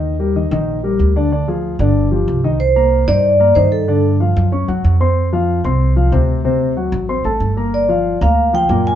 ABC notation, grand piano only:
X:1
M:4/4
L:1/8
Q:1/4=187
K:Eb
V:1 name="Grand piano"
[E,Ee] [G,GB] [E,Ee] [E,Ee]2 [G,GB]2 [D,Dd] | [D,Dd] [F,FA]2 [D,Dd]2 [F,FG]2 [E,Ee] | [K:Cm] z [B,Bb]2 [Ec]2 [B,Bb] [E,Ee]2 | [D,Dd]2 [F,Ff]2 [^C^c^c'] [^F,^F^f]2 [=C=c=c']- |
[Ccc'] [F,Ff]2 [Ccc']2 [F,Ff] [C,Cc]2 | [C,Cc]2 [^F,^F^f]2 [Ccc'] [=A,=A=a]2 [B,Bb]- | [B,Bb] [F,Ff]2 [B,Bb]2 [F,Ff] [B,,B,B]2 |]